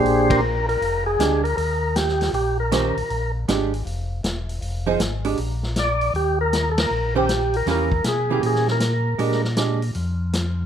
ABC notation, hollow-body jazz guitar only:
X:1
M:4/4
L:1/8
Q:"Swing" 1/4=158
K:Bbmix
V:1 name="Hollow-body jazz guitar"
z6 [A,DG] z | z6 [E,_DGc] z | z2 [A,DG] z4 z | z [F,EAc] z [A,DG] z4 |
z4 z [E,_DGc] z2 | [=E,B,^CG] z2 [E,B,CG]3 z2 | [A,DG] z [A,DG] z4 z |]